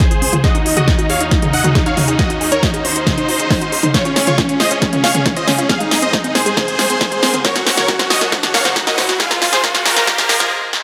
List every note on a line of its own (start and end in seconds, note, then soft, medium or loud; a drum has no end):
0.00 0.40 C#2 medium
0.00 0.40 C#3 medium
0.00 0.40 G#3 medium
0.00 5.66 F4 medium
0.00 0.06 F4 medium
0.00 0.35 G#4 medium
0.00 0.40 G#4 medium
0.00 0.35 C5 loud
0.00 kick loud
0.00 snare medium
0.00 closed hi-hat medium
0.11 0.17 F4 medium
0.11 closed hi-hat medium
0.22 0.26 C#4 medium
0.22 open hi-hat loud
0.33 0.39 F4 medium
0.33 closed hi-hat medium
0.33 mid tom medium
0.44 3.91 D#2 medium
0.44 3.91 D#3 medium
0.44 3.91 C#4 medium
0.44 0.54 F#4 medium
0.44 3.91 F#4 medium
0.44 0.50 G#4 medium
0.44 0.54 D#5 loud
0.44 0.54 D#5 medium
0.44 kick loud
0.44 snare medium
0.44 closed hi-hat medium
0.55 0.58 D#4 medium
0.55 0.65 D#4 medium
0.55 closed hi-hat medium
0.66 0.76 D#4 medium
0.66 0.72 F#4 medium
0.66 open hi-hat loud
0.77 0.87 F#4 medium
0.77 0.83 G#4 medium
0.77 0.87 D#5 medium
0.77 closed hi-hat medium
0.77 mid tom medium
0.88 0.91 D#4 medium
0.88 0.97 D#4 medium
0.88 0.98 D#4 medium
0.88 kick loud
0.88 snare medium
0.88 closed hi-hat medium
0.99 1.08 D#4 medium
0.99 1.05 F#4 medium
0.99 closed hi-hat medium
1.10 1.16 G#4 medium
1.10 1.19 C#5 medium
1.10 1.19 F5 medium
1.10 open hi-hat loud
1.20 1.24 D#4 medium
1.20 1.30 D#4 medium
1.20 closed hi-hat medium
1.31 1.41 D#4 medium
1.31 1.38 F#4 medium
1.31 kick loud
1.31 snare medium
1.31 closed hi-hat medium
1.42 1.52 D#4 medium
1.42 1.49 G#4 medium
1.42 closed hi-hat medium
1.42 mid tom medium
1.53 1.57 D#4 medium
1.53 1.63 D#5 medium
1.53 1.63 F#5 medium
1.53 open hi-hat loud
1.64 1.74 D#4 medium
1.64 1.70 F#4 medium
1.64 closed hi-hat medium
1.64 mid tom medium
1.75 1.85 D#4 medium
1.75 1.81 G#4 medium
1.75 kick loud
1.75 snare medium
1.75 closed hi-hat medium
1.86 1.90 D#4 medium
1.86 1.96 C#5 medium
1.86 1.96 F5 medium
1.86 1.96 F5 loud
1.86 closed hi-hat medium
1.97 2.07 D#4 medium
1.97 2.03 F#4 medium
1.97 open hi-hat loud
1.97 mid tom medium
2.08 2.18 D#4 medium
2.08 2.14 G#4 medium
2.08 closed hi-hat medium
2.19 2.23 D#4 medium
2.19 2.29 F#4 medium
2.19 2.29 D#5 medium
2.19 kick loud
2.19 snare medium
2.19 closed hi-hat medium
2.30 2.40 D#4 medium
2.30 2.36 F#4 medium
2.30 closed hi-hat medium
2.41 2.51 D#4 medium
2.41 2.47 G#4 medium
2.41 open hi-hat loud
2.52 2.56 D#4 medium
2.52 2.62 A#4 medium
2.52 2.62 C#5 medium
2.52 closed hi-hat medium
2.63 2.73 D#4 medium
2.63 2.69 F#4 medium
2.63 kick loud
2.63 snare medium
2.63 closed hi-hat medium
2.74 2.84 D#4 medium
2.74 2.80 G#4 medium
2.74 closed hi-hat medium
2.85 3.86 D#4 medium
2.85 2.88 D#4 medium
2.85 3.85 C5 loud
2.85 3.86 C5 loud
2.85 open hi-hat loud
2.96 3.02 F#4 medium
2.96 closed hi-hat medium
3.07 3.13 G#4 medium
3.07 kick loud
3.07 snare medium
3.07 closed hi-hat medium
3.07 mid tom medium
3.18 3.21 D#4 medium
3.18 closed hi-hat medium
3.28 3.35 F#4 medium
3.28 open hi-hat loud
3.39 3.46 G#4 medium
3.39 closed hi-hat medium
3.50 3.54 D#4 medium
3.50 kick loud
3.50 snare medium
3.50 open hi-hat medium
3.61 3.68 F#4 medium
3.61 closed hi-hat medium
3.72 3.78 G#4 medium
3.72 open hi-hat loud
3.83 3.87 D#4 medium
3.83 closed hi-hat medium
3.83 mid tom medium
3.94 5.68 C#2 medium
3.94 5.68 C#3 medium
3.94 5.68 G#3 medium
3.94 4.04 F4 medium
3.94 4.00 F4 medium
3.94 7.41 G#4 medium
3.94 4.04 C#5 medium
3.94 4.04 C#5 loud
3.94 kick loud
3.94 snare medium
3.94 closed hi-hat medium
3.94 riser medium
4.05 4.15 C#4 medium
4.05 4.11 F4 medium
4.05 closed hi-hat medium
4.16 4.20 C#4 medium
4.16 4.26 C#4 medium
4.16 snare medium
4.16 open hi-hat loud
4.27 4.37 F4 medium
4.27 4.33 F4 medium
4.27 4.37 C#5 medium
4.27 closed hi-hat medium
4.27 mid tom medium
4.38 4.48 C#4 medium
4.38 4.44 F4 medium
4.38 kick loud
4.38 snare medium
4.38 closed hi-hat medium
4.49 4.59 C#4 medium
4.49 4.53 C#4 medium
4.49 closed hi-hat medium
4.60 4.66 F4 medium
4.60 4.70 C5 medium
4.60 4.70 D#5 loud
4.60 snare medium
4.60 open hi-hat loud
4.71 4.81 C#4 medium
4.71 4.77 F4 medium
4.71 closed hi-hat medium
4.82 4.91 C#4 medium
4.82 4.86 C#4 medium
4.82 4.92 C#4 medium
4.82 kick loud
4.82 snare medium
4.82 closed hi-hat medium
4.93 5.03 C#4 medium
4.93 4.99 F4 medium
4.93 closed hi-hat medium
4.93 mid tom medium
5.04 5.10 F4 medium
5.04 5.14 C#5 medium
5.04 5.13 F5 medium
5.04 5.14 F5 medium
5.04 snare medium
5.04 open hi-hat loud
5.15 5.24 C#4 medium
5.15 5.18 C#4 medium
5.15 5.25 C#4 medium
5.15 closed hi-hat medium
5.15 mid tom medium
5.26 5.35 C#4 medium
5.26 5.32 F4 medium
5.26 kick loud
5.26 snare medium
5.26 closed hi-hat medium
5.36 5.43 F4 medium
5.36 5.46 C5 medium
5.36 5.46 D#5 medium
5.36 closed hi-hat medium
5.47 5.57 C#4 medium
5.47 5.51 C#4 medium
5.47 snare medium
5.47 open hi-hat loud
5.47 mid tom medium
5.58 5.68 C#4 medium
5.58 5.65 F4 medium
5.58 closed hi-hat medium
5.69 7.43 G#2 medium
5.69 9.16 F#3 medium
5.69 9.16 A#3 medium
5.69 7.43 C4 medium
5.69 5.76 C4 medium
5.69 5.79 G#4 medium
5.69 5.79 F5 medium
5.69 kick loud
5.69 snare medium
5.69 closed hi-hat medium
5.80 5.84 G#3 medium
5.80 5.90 D#4 medium
5.80 closed hi-hat medium
5.91 5.97 C4 medium
5.91 6.01 D#4 medium
5.91 snare medium
5.91 open hi-hat loud
6.02 6.08 C4 medium
6.02 6.12 C5 medium
6.02 6.12 D#5 medium
6.02 closed hi-hat medium
6.13 6.17 G#3 medium
6.13 6.23 D#4 medium
6.13 kick loud
6.13 snare medium
6.13 closed hi-hat medium
6.24 6.30 C4 medium
6.24 6.34 D#4 medium
6.24 closed hi-hat medium
6.35 6.41 C4 medium
6.35 7.36 G#4 medium
6.35 7.36 C5 loud
6.35 snare medium
6.35 open hi-hat loud
6.46 6.50 G#3 medium
6.46 closed hi-hat medium
6.57 6.63 C4 medium
6.57 kick loud
6.57 snare medium
6.57 closed hi-hat medium
6.57 mid tom medium
6.68 6.74 C4 medium
6.68 closed hi-hat medium
6.79 6.83 G#3 medium
6.79 snare medium
6.79 open hi-hat loud
6.90 6.96 C4 medium
6.90 closed hi-hat medium
7.01 7.07 C4 medium
7.01 kick loud
7.01 snare medium
7.01 closed hi-hat medium
7.12 7.15 G#3 medium
7.12 closed hi-hat medium
7.23 7.29 C4 medium
7.23 snare medium
7.23 open hi-hat loud
7.34 7.40 C4 medium
7.34 closed hi-hat medium
7.34 mid tom medium
7.45 9.18 F#2 medium
7.45 9.18 C#4 medium
7.45 7.48 F#4 medium
7.45 7.54 A#4 medium
7.45 7.54 C#5 loud
7.45 9.18 C#5 medium
7.45 kick loud
7.45 snare medium
7.45 closed hi-hat medium
7.56 7.65 F#4 medium
7.56 7.62 A#4 medium
7.56 snare medium
7.56 closed hi-hat medium
7.67 7.76 F#4 medium
7.67 7.73 C5 medium
7.67 snare medium
7.67 open hi-hat loud
7.77 7.81 F#4 medium
7.77 7.87 A#4 medium
7.77 7.87 C#5 loud
7.77 snare medium
7.77 closed hi-hat medium
7.77 mid tom medium
7.88 7.98 F#4 medium
7.88 7.95 A#4 medium
7.88 kick loud
7.88 snare loud
7.88 closed hi-hat medium
7.99 8.09 F#4 medium
7.99 8.05 C5 medium
7.99 snare medium
7.99 closed hi-hat medium
8.10 8.14 F#4 medium
8.10 8.20 F#4 medium
8.10 8.20 D#5 loud
8.10 snare loud
8.10 open hi-hat loud
8.21 8.31 F#4 medium
8.21 8.27 A#4 medium
8.21 snare medium
8.21 closed hi-hat medium
8.32 8.42 F#4 medium
8.32 8.38 C5 medium
8.32 kick loud
8.32 snare loud
8.32 closed hi-hat medium
8.43 8.53 F#4 medium
8.43 8.47 F#4 medium
8.43 snare medium
8.43 closed hi-hat medium
8.43 mid tom medium
8.54 8.60 A#4 medium
8.54 8.64 C#5 medium
8.54 8.64 F5 medium
8.54 snare loud
8.54 open hi-hat loud
8.65 8.75 F#4 medium
8.65 8.71 C5 medium
8.65 snare medium
8.65 closed hi-hat medium
8.65 mid tom medium
8.76 8.86 F#4 medium
8.76 8.80 F#4 medium
8.76 8.86 F#4 medium
8.76 kick loud
8.76 snare loud
8.76 closed hi-hat medium
8.87 8.97 F#4 medium
8.87 8.93 A#4 medium
8.87 8.97 D#5 medium
8.87 snare medium
8.87 closed hi-hat medium
8.98 9.08 F#4 medium
8.98 9.04 C5 medium
8.98 snare loud
8.98 open hi-hat loud
8.98 mid tom medium
9.09 9.19 F#4 medium
9.09 9.13 F#4 medium
9.09 9.19 F#4 medium
9.09 snare medium
9.09 closed hi-hat medium
9.20 10.83 F2 medium
9.20 10.83 F3 medium
9.20 10.83 G#3 medium
9.20 10.83 D#4 medium
9.20 9.29 G#4 medium
9.20 9.26 G#4 medium
9.20 10.83 C5 medium
9.20 9.30 F5 medium
9.20 kick loud
9.20 snare loud
9.20 closed hi-hat medium
9.31 9.40 F4 medium
9.31 9.41 F4 medium
9.31 9.37 A#4 medium
9.31 snare medium
9.31 closed hi-hat medium
9.42 9.51 F4 medium
9.42 9.45 F4 medium
9.42 9.52 F4 medium
9.42 snare loud
9.42 open hi-hat loud
9.52 9.62 G#4 medium
9.52 9.59 G#4 medium
9.52 9.62 C5 loud
9.52 snare medium
9.52 closed hi-hat medium
9.52 mid tom medium
9.63 9.73 F4 medium
9.63 9.70 A#4 medium
9.63 kick loud
9.63 snare loud
9.63 closed hi-hat medium
9.75 9.84 F4 medium
9.75 9.78 F4 medium
9.75 9.84 F4 medium
9.75 snare medium
9.75 closed hi-hat medium
9.85 10.51 F4 medium
9.85 9.92 G#4 medium
9.85 10.51 A#4 loud
9.85 snare loud
9.85 open hi-hat loud
9.96 10.03 A#4 medium
9.96 snare medium
9.96 closed hi-hat medium
10.07 10.11 F4 medium
10.07 kick loud
10.07 snare loud
10.07 closed hi-hat medium
10.07 mid tom medium
10.18 10.24 G#4 medium
10.18 snare loud
10.18 closed hi-hat medium
10.29 10.35 A#4 medium
10.29 snare loud
10.29 open hi-hat loud
10.40 10.44 F4 medium
10.40 snare loud
10.40 closed hi-hat medium
10.73 snare medium